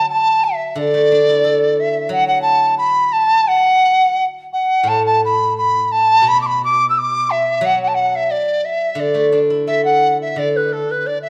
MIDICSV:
0, 0, Header, 1, 3, 480
1, 0, Start_track
1, 0, Tempo, 677201
1, 541, Time_signature, 2, 2, 24, 8
1, 2455, Tempo, 691244
1, 7890, End_track
2, 0, Start_track
2, 0, Title_t, "Dizi"
2, 0, Program_c, 0, 73
2, 66, Note_on_c, 0, 81, 80
2, 309, Note_on_c, 0, 76, 76
2, 320, Note_off_c, 0, 81, 0
2, 496, Note_off_c, 0, 76, 0
2, 496, Note_on_c, 0, 76, 55
2, 552, Note_on_c, 0, 74, 89
2, 563, Note_off_c, 0, 76, 0
2, 1270, Note_on_c, 0, 76, 77
2, 1280, Note_off_c, 0, 74, 0
2, 1495, Note_off_c, 0, 76, 0
2, 1499, Note_on_c, 0, 78, 89
2, 1605, Note_off_c, 0, 78, 0
2, 1608, Note_on_c, 0, 78, 90
2, 1706, Note_off_c, 0, 78, 0
2, 1710, Note_on_c, 0, 81, 88
2, 1943, Note_off_c, 0, 81, 0
2, 1965, Note_on_c, 0, 83, 91
2, 2209, Note_on_c, 0, 81, 91
2, 2220, Note_off_c, 0, 83, 0
2, 2461, Note_on_c, 0, 78, 97
2, 2472, Note_off_c, 0, 81, 0
2, 2998, Note_off_c, 0, 78, 0
2, 3191, Note_on_c, 0, 78, 79
2, 3434, Note_on_c, 0, 81, 90
2, 3445, Note_off_c, 0, 78, 0
2, 3553, Note_off_c, 0, 81, 0
2, 3557, Note_on_c, 0, 81, 85
2, 3667, Note_off_c, 0, 81, 0
2, 3690, Note_on_c, 0, 83, 84
2, 3905, Note_off_c, 0, 83, 0
2, 3919, Note_on_c, 0, 83, 89
2, 4155, Note_on_c, 0, 81, 93
2, 4165, Note_off_c, 0, 83, 0
2, 4406, Note_on_c, 0, 83, 104
2, 4416, Note_off_c, 0, 81, 0
2, 4489, Note_off_c, 0, 83, 0
2, 4500, Note_on_c, 0, 86, 67
2, 4533, Note_on_c, 0, 83, 94
2, 4544, Note_off_c, 0, 86, 0
2, 4643, Note_off_c, 0, 83, 0
2, 4658, Note_on_c, 0, 86, 92
2, 4824, Note_off_c, 0, 86, 0
2, 4834, Note_on_c, 0, 88, 68
2, 4892, Note_on_c, 0, 86, 99
2, 4902, Note_off_c, 0, 88, 0
2, 5119, Note_on_c, 0, 76, 90
2, 5129, Note_off_c, 0, 86, 0
2, 5358, Note_on_c, 0, 78, 101
2, 5368, Note_off_c, 0, 76, 0
2, 5469, Note_off_c, 0, 78, 0
2, 5480, Note_on_c, 0, 78, 81
2, 5517, Note_on_c, 0, 81, 71
2, 5527, Note_off_c, 0, 78, 0
2, 5563, Note_on_c, 0, 78, 89
2, 5573, Note_off_c, 0, 81, 0
2, 5708, Note_on_c, 0, 76, 87
2, 5718, Note_off_c, 0, 78, 0
2, 5815, Note_on_c, 0, 74, 78
2, 5825, Note_off_c, 0, 76, 0
2, 6051, Note_on_c, 0, 76, 77
2, 6062, Note_off_c, 0, 74, 0
2, 6292, Note_on_c, 0, 74, 76
2, 6303, Note_off_c, 0, 76, 0
2, 6569, Note_off_c, 0, 74, 0
2, 6761, Note_on_c, 0, 76, 81
2, 6874, Note_off_c, 0, 76, 0
2, 6883, Note_on_c, 0, 78, 82
2, 7111, Note_off_c, 0, 78, 0
2, 7138, Note_on_c, 0, 76, 79
2, 7256, Note_on_c, 0, 74, 81
2, 7266, Note_off_c, 0, 76, 0
2, 7381, Note_on_c, 0, 71, 72
2, 7392, Note_off_c, 0, 74, 0
2, 7495, Note_on_c, 0, 69, 73
2, 7506, Note_off_c, 0, 71, 0
2, 7621, Note_on_c, 0, 71, 77
2, 7631, Note_off_c, 0, 69, 0
2, 7730, Note_on_c, 0, 74, 85
2, 7741, Note_off_c, 0, 71, 0
2, 7830, Note_off_c, 0, 74, 0
2, 7834, Note_on_c, 0, 76, 77
2, 7890, Note_off_c, 0, 76, 0
2, 7890, End_track
3, 0, Start_track
3, 0, Title_t, "Guzheng"
3, 0, Program_c, 1, 107
3, 0, Note_on_c, 1, 54, 61
3, 535, Note_on_c, 1, 50, 60
3, 667, Note_on_c, 1, 57, 43
3, 792, Note_on_c, 1, 62, 51
3, 913, Note_on_c, 1, 64, 43
3, 1015, Note_off_c, 1, 54, 0
3, 1022, Note_on_c, 1, 69, 46
3, 1482, Note_on_c, 1, 54, 61
3, 1612, Note_off_c, 1, 57, 0
3, 1735, Note_off_c, 1, 62, 0
3, 1856, Note_off_c, 1, 64, 0
3, 1967, Note_off_c, 1, 50, 0
3, 1973, Note_off_c, 1, 69, 0
3, 2935, Note_off_c, 1, 54, 0
3, 3407, Note_on_c, 1, 45, 56
3, 4368, Note_on_c, 1, 47, 60
3, 4381, Note_off_c, 1, 45, 0
3, 5334, Note_on_c, 1, 54, 65
3, 5801, Note_off_c, 1, 47, 0
3, 6266, Note_on_c, 1, 50, 56
3, 6400, Note_on_c, 1, 57, 41
3, 6524, Note_on_c, 1, 62, 47
3, 6648, Note_on_c, 1, 64, 42
3, 6754, Note_off_c, 1, 54, 0
3, 6767, Note_on_c, 1, 69, 42
3, 7236, Note_off_c, 1, 50, 0
3, 7244, Note_on_c, 1, 50, 50
3, 7374, Note_off_c, 1, 57, 0
3, 7498, Note_off_c, 1, 62, 0
3, 7620, Note_off_c, 1, 64, 0
3, 7739, Note_off_c, 1, 69, 0
3, 7890, Note_off_c, 1, 50, 0
3, 7890, End_track
0, 0, End_of_file